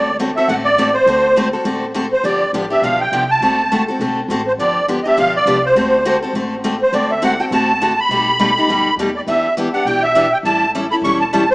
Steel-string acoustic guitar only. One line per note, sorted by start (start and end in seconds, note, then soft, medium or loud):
0.19 0.30 D3 medium
0.19 0.30 A3 medium
0.19 0.30 C4 medium
0.19 0.30 F#4 medium
0.19 0.30 A4 medium
0.38 0.48 C4 soft
0.38 0.48 F#4 medium
0.38 0.48 A4 medium
0.49 0.68 D3 medium
0.49 0.68 A3 medium
0.49 0.68 C4 medium
0.49 0.68 F#4 medium
0.49 0.68 A4 medium
0.78 0.89 D3 medium
0.78 0.89 A3 medium
0.78 0.89 C4 medium
0.78 0.89 F#4 loud
0.78 0.89 A4 medium
1.07 1.26 D3 medium
1.07 1.26 A3 medium
1.07 1.26 C4 medium
1.07 1.27 F#4 medium
1.07 1.27 A4 medium
1.36 1.47 D3 medium
1.36 1.47 A3 medium
1.36 1.47 C4 medium
1.36 1.47 F#4 medium
1.36 1.47 A4 medium
1.53 1.64 C4 soft
1.53 1.64 F#4 soft
1.53 1.64 A4 medium
1.65 1.84 D3 medium
1.65 1.84 A3 medium
1.65 1.84 C4 medium
1.65 1.85 F#4 medium
1.65 1.85 A4 medium
1.94 2.05 D3 medium
1.94 2.05 A3 medium
1.94 2.05 C4 medium
1.94 2.06 F#4 medium
1.94 2.06 A4 loud
2.24 2.43 D3 medium
2.24 2.43 F3 medium
2.24 2.44 B3 medium
2.24 2.44 D4 medium
2.24 2.44 G4 medium
2.54 2.64 D3 medium
2.54 2.64 F3 medium
2.54 2.64 B3 medium
2.54 2.64 D4 medium
2.54 2.65 G4 medium
2.70 2.83 B3 soft
2.70 2.83 D4 medium
2.70 2.82 G4 medium
2.83 3.02 D3 medium
2.83 3.02 F3 medium
2.83 3.03 B3 medium
2.83 3.03 D4 medium
2.83 3.03 G4 medium
3.13 3.23 D3 medium
3.13 3.23 F3 medium
3.13 3.23 B3 medium
3.13 3.23 D4 medium
3.13 3.23 G4 medium
3.42 3.61 D3 medium
3.42 3.61 A3 medium
3.42 3.61 C4 medium
3.42 3.61 F#4 medium
3.42 3.61 A4 medium
3.72 3.82 D3 medium
3.72 3.82 A3 medium
3.72 3.82 C4 medium
3.72 3.82 F#4 medium
3.72 3.82 A4 medium
3.88 4.00 C4 soft
3.88 4.00 F#4 soft
3.88 4.00 A4 medium
4.01 4.20 D3 medium
4.01 4.19 A3 medium
4.01 4.20 C4 medium
4.01 4.20 F#4 medium
4.01 4.20 A4 medium
4.30 4.40 D3 medium
4.30 4.40 A3 medium
4.30 4.41 C4 medium
4.30 4.41 F#4 medium
4.30 4.41 A4 medium
4.59 4.78 D3 medium
4.59 4.78 F3 medium
4.59 4.78 B3 medium
4.59 4.79 D4 medium
4.59 4.79 G4 medium
4.88 4.99 D3 medium
4.88 4.99 F3 medium
4.88 4.99 B3 medium
4.88 4.99 D4 medium
4.88 4.99 G4 medium
5.05 5.17 B3 soft
5.05 5.17 D4 medium
5.05 5.17 G4 medium
5.17 5.36 D3 medium
5.17 5.37 F3 medium
5.17 5.37 B3 medium
5.17 5.37 D4 medium
5.17 5.37 G4 medium
5.46 5.57 D3 medium
5.46 5.57 F3 medium
5.46 5.57 B3 medium
5.46 5.57 D4 medium
5.46 5.58 G4 medium
5.76 5.95 D3 medium
5.76 5.95 A3 medium
5.76 5.95 C4 medium
5.76 5.95 F#4 medium
5.76 5.96 A4 medium
6.05 6.16 D3 medium
6.05 6.16 A3 medium
6.05 6.16 C4 loud
6.05 6.16 F#4 loud
6.05 6.16 A4 medium
6.23 6.34 C4 soft
6.23 6.34 F#4 soft
6.23 6.34 A4 medium
6.35 6.54 D3 medium
6.35 6.54 A3 medium
6.35 6.54 C4 medium
6.35 6.54 F#4 medium
6.35 6.54 A4 medium
6.64 6.74 D3 medium
6.64 6.74 A3 medium
6.64 6.75 C4 medium
6.64 6.75 F#4 medium
6.64 6.75 A4 medium
6.93 7.12 D3 medium
6.93 7.12 A3 medium
6.93 7.12 C4 medium
6.93 7.13 F#4 medium
6.93 7.13 A4 medium
7.22 7.33 D3 medium
7.22 7.33 A3 medium
7.22 7.33 C4 medium
7.22 7.33 F#4 medium
7.22 7.33 A4 medium
7.40 7.51 C4 medium
7.40 7.51 F#4 medium
7.40 7.51 A4 medium
7.52 7.71 D3 medium
7.52 7.71 A3 medium
7.52 7.71 C4 medium
7.52 7.71 F#4 medium
7.52 7.71 A4 medium
7.82 7.92 D3 medium
7.82 7.92 A3 medium
7.82 7.92 C4 medium
7.82 7.92 F#4 medium
7.82 7.92 A4 medium
8.11 8.30 B2 medium
8.11 8.30 G3 medium
8.11 8.30 A3 medium
8.11 8.30 D#4 medium
8.11 8.30 G4 medium
8.39 8.50 B2 medium
8.39 8.50 G3 medium
8.39 8.50 A3 medium
8.39 8.50 D#4 medium
8.39 8.50 G4 medium
8.57 8.69 A3 soft
8.57 8.69 D#4 medium
8.57 8.69 G4 medium
8.69 8.88 B2 medium
8.69 8.88 G3 medium
8.69 8.88 A3 medium
8.69 8.88 D#4 medium
8.69 8.89 G4 medium
8.99 9.09 B2 medium
8.99 9.09 G3 medium
8.99 9.09 A3 medium
8.99 9.09 D#4 medium
8.99 9.10 G4 medium
9.28 9.46 E3 medium
9.28 9.47 B3 medium
9.28 9.47 D4 medium
9.28 9.47 G4 medium
9.57 9.67 E3 medium
9.57 9.68 B3 medium
9.57 9.68 D4 medium
9.57 9.68 G4 loud
9.74 9.86 B3 soft
9.74 9.86 D4 soft
9.74 9.85 G4 medium
9.87 10.05 E3 medium
9.87 10.05 B3 medium
9.87 10.06 D4 medium
9.87 10.06 G4 medium
10.15 10.26 E3 medium
10.15 10.26 B3 medium
10.15 10.26 D4 medium
10.15 10.26 G4 medium
10.45 10.64 E3 medium
10.45 10.64 G3 medium
10.45 10.64 C#4 medium
10.45 10.64 E4 medium
10.45 10.64 A4 medium
10.75 10.84 E3 medium
10.75 10.85 G3 medium
10.75 10.85 C#4 medium
10.75 10.85 E4 medium
10.75 10.85 A4 medium
10.92 11.04 C#4 soft
10.92 11.03 E4 soft
10.92 11.03 A4 medium
11.04 11.22 E3 medium
11.04 11.23 G3 medium
11.04 11.23 C#4 medium
11.04 11.23 E4 medium
11.04 11.23 A4 medium
11.33 11.43 E3 medium
11.33 11.43 G3 medium
11.33 11.43 C#4 medium
11.33 11.43 E4 loud
11.33 11.43 A4 medium